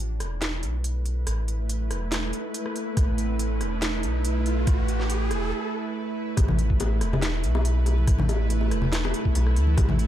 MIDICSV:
0, 0, Header, 1, 5, 480
1, 0, Start_track
1, 0, Tempo, 425532
1, 1429, Time_signature, 4, 2, 24, 8
1, 11360, End_track
2, 0, Start_track
2, 0, Title_t, "Synth drone"
2, 0, Program_c, 0, 95
2, 0, Note_on_c, 0, 57, 84
2, 0, Note_on_c, 0, 64, 71
2, 0, Note_on_c, 0, 71, 87
2, 7146, Note_off_c, 0, 57, 0
2, 7146, Note_off_c, 0, 64, 0
2, 7146, Note_off_c, 0, 71, 0
2, 7191, Note_on_c, 0, 57, 85
2, 7194, Note_on_c, 0, 64, 78
2, 7194, Note_on_c, 0, 71, 89
2, 10993, Note_off_c, 0, 71, 0
2, 11360, Note_off_c, 0, 57, 0
2, 11360, Note_off_c, 0, 64, 0
2, 11360, End_track
3, 0, Start_track
3, 0, Title_t, "Sub bass"
3, 0, Program_c, 1, 38
3, 0, Note_on_c, 1, 33, 95
3, 229, Note_on_c, 1, 28, 100
3, 246, Note_off_c, 1, 33, 0
3, 712, Note_on_c, 1, 35, 83
3, 729, Note_off_c, 1, 28, 0
3, 1416, Note_off_c, 1, 35, 0
3, 1430, Note_on_c, 1, 33, 99
3, 2150, Note_on_c, 1, 28, 104
3, 2167, Note_off_c, 1, 33, 0
3, 2615, Note_off_c, 1, 28, 0
3, 3352, Note_on_c, 1, 33, 97
3, 4069, Note_on_c, 1, 28, 102
3, 4086, Note_off_c, 1, 33, 0
3, 4552, Note_on_c, 1, 35, 84
3, 4569, Note_off_c, 1, 28, 0
3, 5256, Note_off_c, 1, 35, 0
3, 5990, Note_on_c, 1, 28, 102
3, 6229, Note_off_c, 1, 28, 0
3, 7192, Note_on_c, 1, 33, 101
3, 7911, Note_on_c, 1, 28, 101
3, 7928, Note_off_c, 1, 33, 0
3, 8390, Note_on_c, 1, 35, 81
3, 8407, Note_off_c, 1, 28, 0
3, 9095, Note_off_c, 1, 35, 0
3, 9110, Note_on_c, 1, 33, 104
3, 9830, Note_on_c, 1, 28, 98
3, 9847, Note_off_c, 1, 33, 0
3, 10295, Note_off_c, 1, 28, 0
3, 10553, Note_on_c, 1, 35, 89
3, 10790, Note_on_c, 1, 38, 87
3, 10807, Note_off_c, 1, 35, 0
3, 11012, Note_off_c, 1, 38, 0
3, 11030, Note_on_c, 1, 33, 102
3, 11360, Note_off_c, 1, 33, 0
3, 11360, End_track
4, 0, Start_track
4, 0, Title_t, "Riser"
4, 0, Program_c, 2, 103
4, 0, Note_on_c, 2, 60, 78
4, 6228, Note_off_c, 2, 60, 0
4, 11360, End_track
5, 0, Start_track
5, 0, Title_t, "Drums"
5, 229, Note_on_c, 9, 37, 52
5, 229, Note_on_c, 9, 42, 52
5, 341, Note_off_c, 9, 37, 0
5, 341, Note_off_c, 9, 42, 0
5, 470, Note_on_c, 9, 38, 123
5, 470, Note_on_c, 9, 42, 82
5, 582, Note_off_c, 9, 38, 0
5, 582, Note_off_c, 9, 42, 0
5, 709, Note_on_c, 9, 42, 54
5, 822, Note_off_c, 9, 42, 0
5, 950, Note_on_c, 9, 42, 83
5, 1063, Note_off_c, 9, 42, 0
5, 1190, Note_on_c, 9, 42, 53
5, 1303, Note_off_c, 9, 42, 0
5, 1430, Note_on_c, 9, 37, 54
5, 1430, Note_on_c, 9, 42, 85
5, 1542, Note_off_c, 9, 37, 0
5, 1542, Note_off_c, 9, 42, 0
5, 1670, Note_on_c, 9, 42, 55
5, 1783, Note_off_c, 9, 42, 0
5, 1911, Note_on_c, 9, 42, 79
5, 2024, Note_off_c, 9, 42, 0
5, 2150, Note_on_c, 9, 37, 52
5, 2150, Note_on_c, 9, 42, 53
5, 2263, Note_off_c, 9, 37, 0
5, 2263, Note_off_c, 9, 42, 0
5, 2389, Note_on_c, 9, 38, 122
5, 2389, Note_on_c, 9, 42, 82
5, 2502, Note_off_c, 9, 38, 0
5, 2502, Note_off_c, 9, 42, 0
5, 2629, Note_on_c, 9, 42, 53
5, 2742, Note_off_c, 9, 42, 0
5, 2869, Note_on_c, 9, 42, 83
5, 2982, Note_off_c, 9, 42, 0
5, 2997, Note_on_c, 9, 37, 52
5, 3109, Note_on_c, 9, 42, 53
5, 3110, Note_off_c, 9, 37, 0
5, 3222, Note_off_c, 9, 42, 0
5, 3349, Note_on_c, 9, 37, 54
5, 3349, Note_on_c, 9, 42, 80
5, 3350, Note_on_c, 9, 36, 127
5, 3462, Note_off_c, 9, 37, 0
5, 3462, Note_off_c, 9, 42, 0
5, 3463, Note_off_c, 9, 36, 0
5, 3589, Note_on_c, 9, 42, 58
5, 3701, Note_off_c, 9, 42, 0
5, 3828, Note_on_c, 9, 42, 77
5, 3941, Note_off_c, 9, 42, 0
5, 4068, Note_on_c, 9, 37, 50
5, 4068, Note_on_c, 9, 42, 53
5, 4181, Note_off_c, 9, 37, 0
5, 4181, Note_off_c, 9, 42, 0
5, 4308, Note_on_c, 9, 38, 127
5, 4308, Note_on_c, 9, 42, 81
5, 4421, Note_off_c, 9, 38, 0
5, 4421, Note_off_c, 9, 42, 0
5, 4548, Note_on_c, 9, 42, 52
5, 4661, Note_off_c, 9, 42, 0
5, 4789, Note_on_c, 9, 42, 80
5, 4901, Note_off_c, 9, 42, 0
5, 5029, Note_on_c, 9, 42, 53
5, 5142, Note_off_c, 9, 42, 0
5, 5269, Note_on_c, 9, 37, 52
5, 5269, Note_on_c, 9, 42, 80
5, 5270, Note_on_c, 9, 36, 125
5, 5381, Note_off_c, 9, 37, 0
5, 5381, Note_off_c, 9, 42, 0
5, 5383, Note_off_c, 9, 36, 0
5, 5509, Note_on_c, 9, 42, 52
5, 5622, Note_off_c, 9, 42, 0
5, 5637, Note_on_c, 9, 38, 39
5, 5749, Note_on_c, 9, 42, 78
5, 5750, Note_off_c, 9, 38, 0
5, 5861, Note_off_c, 9, 42, 0
5, 5987, Note_on_c, 9, 37, 51
5, 5987, Note_on_c, 9, 42, 52
5, 6100, Note_off_c, 9, 37, 0
5, 6100, Note_off_c, 9, 42, 0
5, 7185, Note_on_c, 9, 60, 58
5, 7189, Note_on_c, 9, 37, 57
5, 7189, Note_on_c, 9, 42, 84
5, 7190, Note_on_c, 9, 36, 120
5, 7298, Note_off_c, 9, 60, 0
5, 7302, Note_off_c, 9, 37, 0
5, 7302, Note_off_c, 9, 42, 0
5, 7303, Note_off_c, 9, 36, 0
5, 7314, Note_on_c, 9, 64, 86
5, 7318, Note_on_c, 9, 63, 80
5, 7427, Note_off_c, 9, 64, 0
5, 7429, Note_on_c, 9, 42, 60
5, 7431, Note_off_c, 9, 63, 0
5, 7542, Note_off_c, 9, 42, 0
5, 7557, Note_on_c, 9, 36, 63
5, 7668, Note_on_c, 9, 42, 79
5, 7670, Note_off_c, 9, 36, 0
5, 7676, Note_on_c, 9, 60, 85
5, 7781, Note_off_c, 9, 42, 0
5, 7788, Note_off_c, 9, 60, 0
5, 7908, Note_on_c, 9, 37, 55
5, 7908, Note_on_c, 9, 42, 55
5, 8021, Note_off_c, 9, 37, 0
5, 8021, Note_off_c, 9, 42, 0
5, 8045, Note_on_c, 9, 64, 106
5, 8049, Note_on_c, 9, 60, 56
5, 8148, Note_on_c, 9, 38, 126
5, 8148, Note_on_c, 9, 42, 84
5, 8158, Note_off_c, 9, 64, 0
5, 8162, Note_off_c, 9, 60, 0
5, 8261, Note_off_c, 9, 38, 0
5, 8261, Note_off_c, 9, 42, 0
5, 8388, Note_on_c, 9, 42, 56
5, 8500, Note_off_c, 9, 42, 0
5, 8515, Note_on_c, 9, 60, 89
5, 8628, Note_off_c, 9, 60, 0
5, 8629, Note_on_c, 9, 42, 83
5, 8742, Note_off_c, 9, 42, 0
5, 8865, Note_on_c, 9, 60, 57
5, 8868, Note_on_c, 9, 42, 56
5, 8978, Note_off_c, 9, 60, 0
5, 8981, Note_off_c, 9, 42, 0
5, 9004, Note_on_c, 9, 63, 63
5, 9108, Note_on_c, 9, 37, 56
5, 9108, Note_on_c, 9, 42, 88
5, 9109, Note_on_c, 9, 36, 121
5, 9117, Note_off_c, 9, 63, 0
5, 9221, Note_off_c, 9, 37, 0
5, 9221, Note_off_c, 9, 42, 0
5, 9222, Note_off_c, 9, 36, 0
5, 9233, Note_on_c, 9, 63, 91
5, 9243, Note_on_c, 9, 64, 98
5, 9346, Note_off_c, 9, 63, 0
5, 9350, Note_on_c, 9, 42, 57
5, 9351, Note_on_c, 9, 60, 82
5, 9356, Note_off_c, 9, 64, 0
5, 9463, Note_off_c, 9, 42, 0
5, 9464, Note_off_c, 9, 60, 0
5, 9589, Note_on_c, 9, 42, 82
5, 9702, Note_off_c, 9, 42, 0
5, 9712, Note_on_c, 9, 60, 56
5, 9824, Note_off_c, 9, 60, 0
5, 9829, Note_on_c, 9, 37, 54
5, 9829, Note_on_c, 9, 42, 56
5, 9942, Note_off_c, 9, 37, 0
5, 9942, Note_off_c, 9, 42, 0
5, 9946, Note_on_c, 9, 64, 97
5, 10059, Note_off_c, 9, 64, 0
5, 10068, Note_on_c, 9, 38, 126
5, 10068, Note_on_c, 9, 42, 83
5, 10181, Note_off_c, 9, 38, 0
5, 10181, Note_off_c, 9, 42, 0
5, 10206, Note_on_c, 9, 60, 82
5, 10309, Note_on_c, 9, 42, 56
5, 10319, Note_off_c, 9, 60, 0
5, 10422, Note_off_c, 9, 42, 0
5, 10438, Note_on_c, 9, 36, 65
5, 10549, Note_on_c, 9, 42, 87
5, 10550, Note_off_c, 9, 36, 0
5, 10554, Note_on_c, 9, 60, 60
5, 10662, Note_off_c, 9, 42, 0
5, 10667, Note_off_c, 9, 60, 0
5, 10677, Note_on_c, 9, 37, 54
5, 10788, Note_on_c, 9, 42, 56
5, 10790, Note_off_c, 9, 37, 0
5, 10901, Note_off_c, 9, 42, 0
5, 10908, Note_on_c, 9, 63, 75
5, 11021, Note_off_c, 9, 63, 0
5, 11025, Note_on_c, 9, 60, 75
5, 11028, Note_on_c, 9, 37, 53
5, 11028, Note_on_c, 9, 42, 85
5, 11030, Note_on_c, 9, 36, 125
5, 11138, Note_off_c, 9, 60, 0
5, 11140, Note_off_c, 9, 37, 0
5, 11140, Note_off_c, 9, 42, 0
5, 11143, Note_off_c, 9, 36, 0
5, 11153, Note_on_c, 9, 63, 100
5, 11161, Note_on_c, 9, 64, 89
5, 11265, Note_off_c, 9, 63, 0
5, 11269, Note_on_c, 9, 42, 55
5, 11274, Note_off_c, 9, 64, 0
5, 11360, Note_off_c, 9, 42, 0
5, 11360, End_track
0, 0, End_of_file